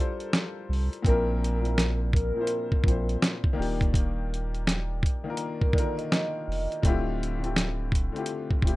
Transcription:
0.00 1.07 G3 loud
0.00 1.06 D4 medium
0.00 1.07 E4 medium
0.00 1.06 F4 medium
0.00 1.07 A4 loud
0.00 1.07 A#4 loud
0.00 0.93 C5 medium
0.20 closed hi-hat soft
0.33 finger snap medium
0.33 snare loud
0.33 closed hi-hat medium
0.69 0.89 C2 medium
0.69 open hi-hat soft
0.93 closed hi-hat soft
1.02 2.32 A#1 medium
1.02 1.51 A#2 loud
1.02 1.52 F3 loud
1.02 1.52 C4 loud
1.02 1.53 D4 medium
1.02 2.10 A#4 loud
1.02 kick loud
1.02 closed hi-hat medium
1.07 1.54 E4 medium
1.07 1.54 A#4 loud
1.44 closed hi-hat medium
1.60 2.19 A#2 medium
1.60 2.20 F3 medium
1.60 2.20 C4 medium
1.60 2.21 D4 medium
1.65 2.22 E4 medium
1.65 2.22 A#4 medium
1.65 closed hi-hat soft
1.78 finger snap medium
1.78 snare loud
1.78 closed hi-hat medium
2.13 3.18 A#4 medium
2.13 kick loud
2.13 closed hi-hat medium
2.35 2.78 A#2 medium
2.35 2.79 F3 medium
2.35 2.79 C4 medium
2.35 2.80 D4 medium
2.40 2.81 E4 medium
2.40 2.81 C5 medium
2.47 closed hi-hat medium
2.72 kick medium
2.84 3.17 A#1 medium
2.84 3.57 A#2 medium
2.84 3.58 F3 medium
2.84 3.58 C4 medium
2.84 kick loud
2.88 3.55 D4 medium
2.88 3.60 E4 medium
2.88 3.60 C5 medium
2.88 closed hi-hat medium
3.09 closed hi-hat soft
3.22 finger snap medium
3.22 snare loud
3.22 closed hi-hat medium
3.44 kick medium
3.53 4.79 D#3 loud
3.53 4.80 A#3 loud
3.53 4.81 D4 loud
3.58 5.07 D#1 loud
3.58 4.81 F4 medium
3.58 4.82 G4 loud
3.62 open hi-hat soft
3.81 kick medium
3.81 closed hi-hat soft
3.94 kick loud
3.94 closed hi-hat medium
4.34 closed hi-hat medium
4.55 closed hi-hat soft
4.67 finger snap medium
4.67 snare loud
4.67 closed hi-hat medium
5.03 kick medium
5.03 closed hi-hat medium
5.24 5.67 D#3 medium
5.24 5.68 A#3 medium
5.24 5.69 D4 medium
5.29 5.70 F4 medium
5.29 5.70 A#4 loud
5.37 closed hi-hat medium
5.61 5.74 A#4 medium
5.61 kick loud
5.73 6.71 D3 medium
5.73 6.69 D#3 medium
5.73 6.70 A#3 medium
5.73 5.96 D5 medium
5.73 kick loud
5.78 6.72 F4 medium
5.78 6.72 A#4 loud
5.78 closed hi-hat medium
5.97 6.79 D#5 medium
5.97 closed hi-hat soft
6.12 finger snap medium
6.12 snare loud
6.12 closed hi-hat medium
6.48 6.68 F1 medium
6.48 open hi-hat soft
6.72 closed hi-hat soft
6.82 8.11 D1 medium
6.82 7.30 D3 loud
6.82 7.31 A3 loud
6.82 7.32 C4 loud
6.82 7.32 E4 loud
6.82 kick loud
6.82 closed hi-hat medium
6.87 7.33 F4 loud
6.87 7.33 G4 loud
7.23 closed hi-hat medium
7.40 7.98 D3 medium
7.40 7.99 A3 medium
7.40 7.99 C4 medium
7.40 8.00 E4 medium
7.44 8.00 F4 medium
7.44 8.01 G4 medium
7.44 closed hi-hat soft
7.56 finger snap medium
7.56 snare loud
7.56 closed hi-hat medium
7.92 kick medium
7.92 closed hi-hat medium
8.12 8.56 D3 medium
8.12 8.57 A3 medium
8.12 8.57 C4 medium
8.12 8.58 E4 medium
8.12 closed hi-hat soft
8.17 8.59 F4 medium
8.17 8.59 G4 loud
8.26 closed hi-hat medium
8.51 kick medium
8.61 8.76 D1 medium
8.61 8.76 D3 medium
8.61 8.76 A3 medium
8.61 8.76 C4 medium
8.61 8.76 E4 medium
8.61 kick loud
8.66 8.76 F4 medium
8.66 8.76 G4 loud
8.66 closed hi-hat medium

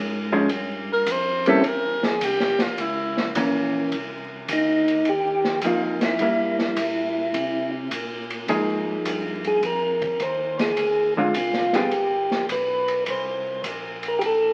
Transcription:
0.00 0.48 G#2 medium
0.32 0.48 F3 medium
0.32 0.49 G#3 medium
0.32 0.49 C#4 medium
0.49 1.05 G2 medium
0.49 kick soft
0.49 ride medium
0.93 1.13 A#4 loud
1.06 1.62 F2 medium
1.06 kick soft
1.06 hi-hat pedal medium
1.06 ride medium
1.11 1.48 C5 loud
1.46 1.63 G3 medium
1.46 1.63 A#3 medium
1.46 1.63 C4 medium
1.46 1.63 C#4 medium
1.46 1.64 E4 medium
1.46 1.69 A4 loud
1.46 ride soft
1.64 2.19 E2 medium
1.64 2.06 A#4 medium
1.64 kick soft
1.64 ride medium
2.03 2.26 G#4 medium
2.03 snare soft
2.21 2.57 C2 medium
2.21 2.63 G4 medium
2.21 kick soft
2.21 hi-hat pedal medium
2.21 ride medium
2.40 snare soft
2.59 2.68 C2 soft
2.59 2.82 F4 medium
2.59 snare soft
2.59 ride soft
2.78 3.33 C#2 medium
2.78 3.36 E4 medium
2.78 kick soft
2.78 ride medium
3.17 snare soft
3.35 3.90 A#1 medium
3.35 3.92 E3 medium
3.35 3.93 A#3 medium
3.35 3.93 C#4 medium
3.35 kick soft
3.35 hi-hat pedal medium
3.35 ride medium
3.92 4.47 C2 medium
3.92 kick soft
3.92 ride soft
4.49 5.04 D2 medium
4.49 kick soft
4.49 hi-hat pedal medium
4.49 ride medium
4.53 5.10 D#4 medium
4.88 ride soft
5.05 5.61 D#2 medium
5.05 5.61 G4 medium
5.05 kick soft
5.05 ride soft
5.44 snare soft
5.62 6.18 F2 medium
5.62 6.20 F3 soft
5.62 6.21 A#3 soft
5.62 6.21 D#4 soft
5.62 kick soft
5.62 hi-hat pedal medium
5.62 ride medium
5.67 5.83 F4 medium
6.01 7.71 E4 medium
6.01 snare soft
6.01 ride soft
6.19 6.75 G2 medium
6.19 7.81 G3 soft
6.19 7.82 A#3 medium
6.19 7.82 E4 soft
6.19 kick soft
6.19 ride soft
6.59 snare soft
6.76 7.32 A#2 medium
6.76 kick soft
6.76 hi-hat pedal soft
6.76 ride medium
7.34 7.90 C3 medium
7.34 kick soft
7.34 ride soft
7.91 8.47 A#2 medium
7.91 kick soft
7.91 hi-hat pedal soft
7.91 ride medium
8.30 ride soft
8.48 8.85 G#2 medium
8.48 10.10 F3 medium
8.48 10.10 A#3 medium
8.48 10.10 D#4 medium
8.48 10.10 G#4 medium
8.48 kick soft
8.48 ride soft
8.88 8.97 G#2 soft
9.05 9.61 G2 medium
9.05 kick soft
9.05 hi-hat pedal medium
9.05 ride medium
9.44 9.65 G#4 medium
9.44 ride soft
9.62 10.18 F2 medium
9.62 10.23 A#4 medium
9.62 kick soft
9.62 ride soft
10.02 kick medium
10.02 ride soft
10.20 10.76 D#2 medium
10.20 10.58 C5 medium
10.20 kick soft
10.20 hi-hat pedal soft
10.20 ride soft
10.59 11.14 G#4 medium
10.59 snare soft
10.59 ride soft
10.77 11.33 D2 medium
10.77 kick soft
10.77 ride medium
11.16 11.34 D3 medium
11.16 11.34 G#3 medium
11.16 11.34 C4 medium
11.16 11.35 F4 medium
11.16 11.34 F4 medium
11.16 kick soft
11.34 11.90 C2 medium
11.34 11.76 F4 medium
11.34 kick soft
11.34 hi-hat pedal soft
11.34 ride medium
11.54 snare soft
11.73 11.91 G3 soft
11.73 11.91 B3 medium
11.73 11.91 F4 medium
11.73 12.46 G4 medium
11.73 11.92 G#4 medium
11.73 snare soft
11.73 ride soft
11.91 12.48 G1 medium
11.91 kick soft
11.91 ride soft
12.31 snare soft
12.49 13.05 B1 medium
12.49 13.04 B4 medium
12.49 kick soft
12.49 hi-hat pedal medium
12.49 ride medium
12.88 ride soft
13.06 13.62 C2 medium
13.06 13.62 C5 medium
13.06 kick soft
13.06 ride medium
13.64 14.20 A#1 medium
13.64 kick soft
13.64 hi-hat pedal soft
13.64 ride medium
14.03 ride soft
14.08 14.20 A#4 medium
14.19 14.53 A1 medium
14.19 14.23 G4 medium
14.19 kick soft
14.19 ride soft
14.26 14.53 A4 medium

